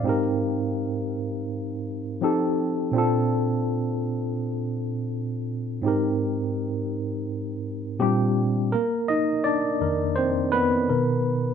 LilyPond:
\new Staff \with { instrumentName = "Tine electric piano" } { \time 4/4 \key bes \major \tempo 4 = 83 << { f''16 r2. r8. | r1 | r2. <g g'>4 | <bes bes'>8 <ees' ees''>8 <d' d''>4 <c' c''>8 <ces' ces''>4. | } \\ { <aes, c' ees' g' bes'>2. <f c' ees' g' a'>4 | <bes, c' d' f' a'>1 | <aes, c' ees' g' bes'>2. <bes, c' d' f' g'>4 | r4. <f, ees bes'>4. <b, dis ais'>4 | } >> }